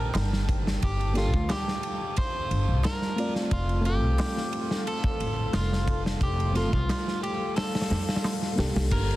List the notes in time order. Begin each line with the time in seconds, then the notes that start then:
Already playing: A#1 A#3 D4 G4 A#4 G5 A5
0.14 G1, snare, ride, darbuka tek
0.33 snare
0.49 kick, ride
0.67 snare
0.82 G1 G4 F5, kick, ride
1.00 ride
1.14 A#3 D4 F4 G4, snare, ride
1.18 A4
1.34 D2, kick
1.49 G4, snare, ride, darbuka tek
1.68 snare
1.83 ride
2.17 C5, kick, ride
2.51 G1, ride
2.68 C2
2.83 A#4, snare, ride, darbuka tek
3.02 snare
3.16 A3 C4 F4 D5, ride
3.35 snare
3.51 F1 F4 A4 C6, kick, ride
3.69 ride
3.81 A3 C4
3.85 F4 G4, ride
3.89 A4
4.03 C2
4.18 snare, open hi-hat, darbuka tek
4.37 snare
4.53 ride
4.71 snare
4.87 A4, ride
5.04 kick
5.20 A1, ride
5.53 F1 F4, snare, ride, darbuka tek
5.73 snare
5.88 kick, ride
6.06 snare
6.21 F1 G4 F5, kick, ride
6.40 ride
6.53 A3 C4 F4, snare, ride
6.57 A4
6.73 C2 F4, kick
6.89 snare, ride, darbuka tek
7.08 snare
7.23 G4, ride
7.56 A4, snare, open hi-hat
7.75 snare, open hi-hat
7.82 snare, open hi-hat
7.90 F2, snare, open hi-hat
8.08 snare, open hi-hat
8.16 snare, open hi-hat
8.24 snare, open hi-hat, darbuka tek
8.42 snare
8.56 C2 A#3 D4 G4, snare, open hi-hat
8.60 A4
8.76 C2, snare, open hi-hat
8.91 G1 A#4 G5 A5, kick, crash, ride
9.11 ride